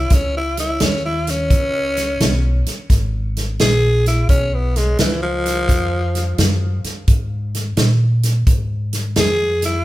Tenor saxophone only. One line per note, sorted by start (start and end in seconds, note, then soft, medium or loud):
0.00 0.15 E4 medium
0.14 0.35 C#4 medium
0.37 0.58 E4 medium
0.60 0.85 E4 medium
0.83 1.05 C#4 medium
1.05 1.32 E4 medium
1.30 2.65 C#4 loud
3.61 4.06 G#4 loud
4.07 4.29 E4 medium
4.29 4.56 C#4 medium
4.54 4.79 B3 medium
4.77 4.99 G#3 medium
5.00 5.22 E3 medium
5.22 6.58 F3 loud
9.19 9.63 G#4 medium
9.65 9.85 E4 medium